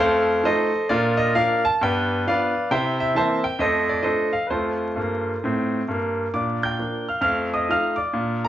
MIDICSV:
0, 0, Header, 1, 2, 480
1, 0, Start_track
1, 0, Tempo, 454890
1, 920, Time_signature, 4, 2, 24, 8
1, 8949, End_track
2, 0, Start_track
2, 0, Title_t, "Grand piano"
2, 0, Program_c, 0, 0
2, 0, Note_on_c, 0, 41, 83
2, 0, Note_on_c, 0, 57, 63
2, 0, Note_on_c, 0, 69, 75
2, 0, Note_on_c, 0, 72, 84
2, 0, Note_on_c, 0, 77, 95
2, 180, Control_c, 0, 64, 127
2, 240, Note_off_c, 0, 57, 0
2, 373, Note_off_c, 0, 41, 0
2, 420, Note_off_c, 0, 69, 0
2, 422, Note_off_c, 0, 72, 0
2, 445, Note_off_c, 0, 77, 0
2, 455, Control_c, 0, 64, 0
2, 456, Note_on_c, 0, 53, 53
2, 471, Note_on_c, 0, 57, 61
2, 477, Note_on_c, 0, 75, 89
2, 478, Note_on_c, 0, 72, 76
2, 483, Note_on_c, 0, 63, 63
2, 483, Note_on_c, 0, 69, 76
2, 716, Note_off_c, 0, 53, 0
2, 727, Note_off_c, 0, 57, 0
2, 735, Note_off_c, 0, 63, 0
2, 906, Note_off_c, 0, 72, 0
2, 909, Note_off_c, 0, 69, 0
2, 938, Note_off_c, 0, 75, 0
2, 942, Note_on_c, 0, 74, 96
2, 949, Note_on_c, 0, 46, 87
2, 954, Note_on_c, 0, 65, 80
2, 955, Note_on_c, 0, 62, 45
2, 961, Note_on_c, 0, 70, 64
2, 1120, Control_c, 0, 64, 127
2, 1209, Note_off_c, 0, 62, 0
2, 1225, Note_off_c, 0, 65, 0
2, 1229, Note_off_c, 0, 70, 0
2, 1237, Note_on_c, 0, 75, 93
2, 1240, Note_off_c, 0, 74, 0
2, 1345, Note_off_c, 0, 46, 0
2, 1404, Note_off_c, 0, 75, 0
2, 1411, Control_c, 0, 64, 0
2, 1423, Note_on_c, 0, 58, 51
2, 1427, Note_on_c, 0, 77, 103
2, 1428, Note_on_c, 0, 53, 55
2, 1435, Note_on_c, 0, 62, 56
2, 1435, Note_on_c, 0, 70, 73
2, 1443, Note_on_c, 0, 74, 78
2, 1681, Note_off_c, 0, 58, 0
2, 1684, Note_off_c, 0, 53, 0
2, 1689, Note_off_c, 0, 62, 0
2, 1706, Note_off_c, 0, 70, 0
2, 1710, Note_off_c, 0, 74, 0
2, 1722, Note_off_c, 0, 77, 0
2, 1739, Note_on_c, 0, 81, 104
2, 1895, Note_off_c, 0, 81, 0
2, 1914, Note_on_c, 0, 43, 83
2, 1926, Note_on_c, 0, 59, 56
2, 1929, Note_on_c, 0, 79, 89
2, 1930, Note_on_c, 0, 74, 63
2, 1933, Note_on_c, 0, 71, 69
2, 2113, Control_c, 0, 64, 127
2, 2177, Note_off_c, 0, 59, 0
2, 2307, Note_off_c, 0, 43, 0
2, 2353, Note_off_c, 0, 74, 0
2, 2355, Note_off_c, 0, 71, 0
2, 2368, Control_c, 0, 64, 0
2, 2384, Note_off_c, 0, 79, 0
2, 2395, Note_on_c, 0, 53, 51
2, 2396, Note_on_c, 0, 62, 55
2, 2402, Note_on_c, 0, 59, 48
2, 2402, Note_on_c, 0, 77, 87
2, 2411, Note_on_c, 0, 74, 82
2, 2421, Note_on_c, 0, 71, 69
2, 2649, Note_off_c, 0, 53, 0
2, 2650, Note_off_c, 0, 62, 0
2, 2654, Note_off_c, 0, 59, 0
2, 2834, Note_off_c, 0, 74, 0
2, 2839, Note_off_c, 0, 71, 0
2, 2856, Note_on_c, 0, 48, 75
2, 2861, Note_off_c, 0, 77, 0
2, 2861, Note_on_c, 0, 79, 90
2, 2865, Note_on_c, 0, 64, 51
2, 2868, Note_on_c, 0, 72, 83
2, 2868, Note_on_c, 0, 76, 75
2, 3050, Control_c, 0, 64, 127
2, 3122, Note_off_c, 0, 64, 0
2, 3142, Note_off_c, 0, 72, 0
2, 3142, Note_off_c, 0, 76, 0
2, 3159, Note_off_c, 0, 79, 0
2, 3167, Note_on_c, 0, 76, 88
2, 3257, Note_off_c, 0, 48, 0
2, 3321, Note_on_c, 0, 52, 51
2, 3327, Note_off_c, 0, 76, 0
2, 3329, Control_c, 0, 64, 0
2, 3337, Note_on_c, 0, 58, 47
2, 3337, Note_on_c, 0, 81, 88
2, 3340, Note_on_c, 0, 60, 50
2, 3343, Note_on_c, 0, 76, 73
2, 3350, Note_on_c, 0, 72, 80
2, 3585, Note_off_c, 0, 52, 0
2, 3597, Note_off_c, 0, 58, 0
2, 3599, Note_off_c, 0, 60, 0
2, 3619, Note_off_c, 0, 76, 0
2, 3623, Note_off_c, 0, 72, 0
2, 3630, Note_on_c, 0, 79, 82
2, 3637, Note_off_c, 0, 81, 0
2, 3788, Note_on_c, 0, 41, 74
2, 3800, Note_off_c, 0, 79, 0
2, 3801, Note_on_c, 0, 75, 92
2, 3813, Note_on_c, 0, 72, 64
2, 3815, Note_on_c, 0, 69, 71
2, 3816, Note_on_c, 0, 57, 50
2, 4024, Control_c, 0, 64, 127
2, 4076, Note_off_c, 0, 57, 0
2, 4094, Note_off_c, 0, 72, 0
2, 4095, Note_off_c, 0, 69, 0
2, 4108, Note_on_c, 0, 74, 80
2, 4109, Note_off_c, 0, 75, 0
2, 4201, Note_off_c, 0, 41, 0
2, 4246, Note_on_c, 0, 53, 44
2, 4249, Note_on_c, 0, 75, 79
2, 4252, Note_on_c, 0, 57, 43
2, 4265, Note_on_c, 0, 69, 68
2, 4265, Note_on_c, 0, 72, 61
2, 4266, Note_on_c, 0, 62, 49
2, 4279, Note_off_c, 0, 74, 0
2, 4290, Control_c, 0, 64, 0
2, 4520, Note_off_c, 0, 53, 0
2, 4524, Note_off_c, 0, 57, 0
2, 4534, Note_off_c, 0, 62, 0
2, 4559, Note_off_c, 0, 69, 0
2, 4559, Note_off_c, 0, 72, 0
2, 4565, Note_on_c, 0, 77, 71
2, 4573, Note_off_c, 0, 75, 0
2, 4695, Note_off_c, 0, 77, 0
2, 4715, Note_on_c, 0, 71, 50
2, 4751, Note_on_c, 0, 41, 56
2, 4752, Note_on_c, 0, 72, 66
2, 4763, Note_off_c, 0, 71, 0
2, 4765, Note_on_c, 0, 65, 55
2, 4766, Note_on_c, 0, 69, 47
2, 4769, Note_on_c, 0, 57, 55
2, 4946, Control_c, 0, 64, 127
2, 5139, Note_off_c, 0, 41, 0
2, 5149, Note_off_c, 0, 57, 0
2, 5233, Note_on_c, 0, 43, 56
2, 5251, Note_on_c, 0, 58, 57
2, 5254, Control_c, 0, 64, 0
2, 5620, Note_off_c, 0, 43, 0
2, 5631, Note_off_c, 0, 58, 0
2, 5737, Note_on_c, 0, 45, 64
2, 5751, Note_on_c, 0, 60, 63
2, 6114, Note_off_c, 0, 45, 0
2, 6123, Note_off_c, 0, 60, 0
2, 6160, Note_off_c, 0, 65, 0
2, 6161, Note_off_c, 0, 69, 0
2, 6196, Note_off_c, 0, 72, 0
2, 6207, Note_on_c, 0, 43, 62
2, 6233, Note_on_c, 0, 58, 64
2, 6588, Note_off_c, 0, 43, 0
2, 6604, Note_off_c, 0, 58, 0
2, 6686, Note_on_c, 0, 46, 60
2, 6687, Note_on_c, 0, 86, 75
2, 6708, Note_on_c, 0, 62, 45
2, 6709, Note_on_c, 0, 74, 53
2, 6902, Control_c, 0, 64, 127
2, 6964, Note_off_c, 0, 62, 0
2, 6983, Note_off_c, 0, 74, 0
2, 6992, Note_off_c, 0, 86, 0
2, 6999, Note_on_c, 0, 91, 76
2, 7019, Note_on_c, 0, 79, 60
2, 7092, Note_off_c, 0, 46, 0
2, 7164, Note_on_c, 0, 53, 36
2, 7168, Control_c, 0, 64, 0
2, 7170, Note_on_c, 0, 58, 35
2, 7180, Note_on_c, 0, 62, 42
2, 7427, Note_off_c, 0, 53, 0
2, 7431, Note_off_c, 0, 58, 0
2, 7438, Note_off_c, 0, 62, 0
2, 7452, Note_off_c, 0, 79, 0
2, 7474, Note_off_c, 0, 91, 0
2, 7477, Note_on_c, 0, 89, 61
2, 7485, Note_on_c, 0, 77, 46
2, 7600, Note_off_c, 0, 89, 0
2, 7609, Note_on_c, 0, 41, 67
2, 7616, Note_on_c, 0, 89, 85
2, 7625, Note_off_c, 0, 77, 0
2, 7641, Note_on_c, 0, 77, 69
2, 7648, Note_on_c, 0, 57, 45
2, 7835, Control_c, 0, 64, 127
2, 7910, Note_off_c, 0, 57, 0
2, 7928, Note_off_c, 0, 77, 0
2, 7937, Note_off_c, 0, 89, 0
2, 7952, Note_on_c, 0, 87, 75
2, 7959, Note_on_c, 0, 75, 59
2, 8031, Note_off_c, 0, 41, 0
2, 8114, Note_off_c, 0, 75, 0
2, 8115, Note_on_c, 0, 53, 41
2, 8119, Note_on_c, 0, 57, 42
2, 8122, Note_off_c, 0, 87, 0
2, 8126, Note_on_c, 0, 63, 47
2, 8132, Note_on_c, 0, 89, 87
2, 8137, Control_c, 0, 64, 0
2, 8137, Note_on_c, 0, 77, 59
2, 8381, Note_off_c, 0, 53, 0
2, 8384, Note_off_c, 0, 57, 0
2, 8389, Note_off_c, 0, 63, 0
2, 8399, Note_on_c, 0, 86, 72
2, 8417, Note_off_c, 0, 77, 0
2, 8419, Note_on_c, 0, 74, 52
2, 8435, Note_off_c, 0, 89, 0
2, 8582, Note_on_c, 0, 46, 67
2, 8607, Note_on_c, 0, 62, 38
2, 8782, Control_c, 0, 64, 127
2, 8870, Note_off_c, 0, 62, 0
2, 8871, Note_off_c, 0, 74, 0
2, 8895, Note_off_c, 0, 86, 0
2, 8912, Note_on_c, 0, 82, 84
2, 8949, Note_off_c, 0, 46, 0
2, 8949, Note_off_c, 0, 82, 0
2, 8949, End_track
0, 0, End_of_file